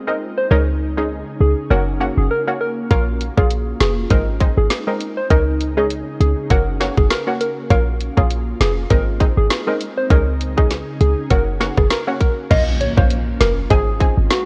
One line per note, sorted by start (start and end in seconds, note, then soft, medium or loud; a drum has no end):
0.00 0.50 G#3 medium
0.00 0.49 C4 medium
0.00 1.68 D#4 medium
0.07 0.26 G#3 medium
0.07 0.26 C4 medium
0.07 0.26 D#4 medium
0.07 0.16 A#4 medium
0.37 0.46 C5 medium
0.50 1.24 C#2 loud
0.50 1.70 C#3 medium
0.50 0.71 G#3 medium
0.50 0.71 C#4 medium
0.50 4.07 C#4 medium
0.50 0.71 D#4 loud
0.50 1.70 G#4 medium
0.50 0.62 A#4 medium
0.97 1.16 G#3 medium
0.97 1.16 C#4 medium
0.97 1.16 D#4 medium
0.97 1.06 G#4 medium
1.41 1.55 C#2 medium
1.41 1.52 G#4 medium
1.70 2.10 F#1 loud
1.70 1.98 A#3 medium
1.70 4.08 A#3 medium
1.70 1.99 C#4 medium
1.70 2.90 F#4 medium
1.70 1.99 F#4 loud
1.70 1.82 A#4 medium
2.00 2.21 A#3 medium
2.00 2.21 C#4 medium
2.00 2.21 F#4 medium
2.17 2.29 F#1 medium
2.17 2.27 G#4 medium
2.31 2.42 A#4 medium
2.47 2.66 A#3 medium
2.47 2.66 C#4 medium
2.47 2.66 F#4 medium
2.61 2.72 A#4 medium
2.91 3.30 A#1 loud
2.91 3.11 A#3 loud
2.91 3.11 C#4 medium
2.91 4.09 F4 medium
2.91 3.11 F4 loud
2.91 3.02 A#4 loud
2.91 kick loud
2.91 closed hi-hat medium
3.21 closed hi-hat medium
3.37 3.74 A#1 medium
3.37 3.56 A#3 medium
3.37 3.56 C#4 medium
3.37 3.56 F4 medium
3.37 3.46 G#4 medium
3.37 kick medium
3.50 closed hi-hat medium
3.81 4.06 F1 medium
3.81 3.92 G#4 medium
3.81 snare loud
3.81 closed hi-hat soft
4.10 4.50 G#1 loud
4.10 4.38 G#3 medium
4.10 5.29 G#3 medium
4.10 5.29 C4 medium
4.10 4.39 C4 medium
4.10 6.48 D#4 medium
4.10 4.39 D#4 loud
4.10 4.22 A#4 medium
4.10 kick loud
4.10 closed hi-hat medium
4.40 4.60 G#3 medium
4.40 4.61 C4 medium
4.40 4.61 D#4 medium
4.40 kick medium
4.40 closed hi-hat soft
4.57 4.69 G#1 medium
4.57 4.66 G#4 medium
4.70 snare loud
4.70 closed hi-hat medium
4.87 5.06 G#3 medium
4.87 5.06 C4 medium
4.87 5.06 D#4 medium
4.87 4.96 A#4 medium
5.01 closed hi-hat medium
5.17 5.26 C5 medium
5.30 6.04 C#2 loud
5.30 6.49 C#3 medium
5.30 5.50 G#3 medium
5.30 5.51 C#4 medium
5.30 7.68 C#4 medium
5.30 5.51 D#4 loud
5.30 6.49 G#4 medium
5.30 5.42 A#4 medium
5.30 kick loud
5.30 closed hi-hat medium
5.61 closed hi-hat medium
5.77 5.96 G#3 medium
5.77 5.96 C#4 medium
5.77 5.96 D#4 medium
5.77 5.86 G#4 medium
5.90 closed hi-hat medium
6.21 6.35 C#2 medium
6.21 6.32 G#4 medium
6.21 closed hi-hat soft
6.50 6.90 F#1 loud
6.50 6.78 A#3 medium
6.50 7.69 A#3 medium
6.50 6.78 C#4 medium
6.50 7.69 F#4 medium
6.50 6.79 F#4 loud
6.50 6.62 A#4 medium
6.50 kick loud
6.50 closed hi-hat medium
6.80 7.00 A#3 medium
6.80 7.01 C#4 medium
6.80 7.01 F#4 medium
6.80 snare medium
6.80 closed hi-hat medium
6.97 7.09 F#1 medium
6.97 7.06 G#4 medium
6.97 kick medium
7.10 7.22 A#4 medium
7.10 snare loud
7.10 closed hi-hat medium
7.27 7.46 A#3 medium
7.27 7.46 C#4 medium
7.27 7.46 F#4 medium
7.41 7.52 A#4 medium
7.41 closed hi-hat medium
7.70 8.10 A#1 loud
7.70 7.90 A#3 medium
7.70 8.89 A#3 medium
7.70 7.91 C#4 medium
7.70 8.89 C#4 medium
7.70 8.89 F4 medium
7.70 7.91 F4 loud
7.70 7.82 A#4 loud
7.70 kick loud
7.70 closed hi-hat medium
8.01 closed hi-hat medium
8.17 8.54 A#1 loud
8.17 8.36 A#3 medium
8.17 8.36 C#4 medium
8.17 8.36 F4 medium
8.17 8.26 G#4 medium
8.17 kick medium
8.31 closed hi-hat medium
8.60 8.86 F1 medium
8.60 8.72 G#4 medium
8.60 snare loud
8.60 closed hi-hat medium
8.90 9.30 G#1 loud
8.90 9.18 G#3 medium
8.90 10.09 G#3 medium
8.90 10.09 C4 medium
8.90 9.18 C4 medium
8.90 11.28 D#4 medium
8.90 9.19 D#4 loud
8.90 9.02 A#4 medium
8.90 kick medium
8.90 closed hi-hat medium
9.20 9.40 G#3 medium
9.20 9.41 C4 medium
9.20 9.41 D#4 medium
9.20 kick medium
9.20 closed hi-hat soft
9.37 9.49 G#1 medium
9.37 9.46 G#4 medium
9.50 snare loud
9.50 closed hi-hat medium
9.67 9.86 G#3 medium
9.67 9.86 C4 medium
9.67 9.86 D#4 medium
9.67 9.76 A#4 medium
9.81 closed hi-hat medium
9.98 10.07 C5 medium
10.10 10.84 C#2 loud
10.10 11.29 C#3 medium
10.10 10.30 G#3 medium
10.10 10.31 C#4 medium
10.10 12.48 C#4 medium
10.10 10.31 D#4 loud
10.10 11.29 G#4 medium
10.10 10.22 A#4 medium
10.10 kick loud
10.10 closed hi-hat medium
10.41 closed hi-hat medium
10.57 10.76 G#3 medium
10.57 10.76 C#4 medium
10.57 10.76 D#4 medium
10.57 10.66 G#4 medium
10.57 kick medium
10.70 snare medium
10.70 closed hi-hat medium
11.01 11.15 C#2 medium
11.01 11.12 G#4 medium
11.01 closed hi-hat soft
11.30 11.70 F#1 loud
11.30 11.58 A#3 medium
11.30 12.49 A#3 medium
11.30 11.58 C#4 medium
11.30 12.49 F#4 medium
11.30 11.59 F#4 loud
11.30 11.42 A#4 medium
11.30 kick loud
11.30 closed hi-hat medium
11.60 11.80 A#3 medium
11.60 11.81 C#4 medium
11.60 11.81 F#4 medium
11.60 snare medium
11.60 closed hi-hat soft
11.77 11.89 F#1 medium
11.77 11.86 G#4 medium
11.77 kick medium
11.77 cross-stick medium
11.90 12.02 A#4 medium
11.90 snare loud
11.90 closed hi-hat medium
12.07 12.26 A#3 medium
12.07 12.26 C#4 medium
12.07 12.26 F#4 medium
12.20 12.32 A#4 medium
12.20 kick medium
12.20 closed hi-hat medium
12.50 12.90 A#1 loud
12.50 12.70 A#3 medium
12.50 13.69 A#3 medium
12.50 12.71 C#4 medium
12.50 13.69 C#4 medium
12.50 13.69 F4 medium
12.50 12.71 F4 loud
12.50 12.62 D#5 loud
12.50 kick loud
12.50 closed hi-hat medium
12.50 crash loud
12.50 impact medium
12.81 12.92 C#5 medium
12.81 closed hi-hat medium
12.97 13.34 A#1 loud
12.97 13.16 A#3 medium
12.97 13.16 C#4 medium
12.97 13.16 F4 medium
12.97 13.06 C5 medium
12.97 kick loud
13.11 closed hi-hat medium
13.41 13.66 F1 medium
13.41 13.52 A#4 medium
13.41 snare loud
13.41 closed hi-hat medium
13.70 14.10 G#1 loud
13.70 14.45 G#3 medium
13.70 13.98 C4 medium
13.70 14.45 C4 medium
13.70 13.98 D#4 medium
13.70 14.45 D#4 medium
13.70 14.15 G#4 loud
13.70 13.99 G#4 loud
13.70 kick loud
13.70 closed hi-hat medium
14.00 14.20 C4 medium
14.00 14.21 D#4 medium
14.00 14.21 G#4 medium
14.00 kick medium
14.00 closed hi-hat medium
14.18 14.29 G#1 medium
14.30 14.45 F#4 medium
14.30 snare loud
14.30 closed hi-hat medium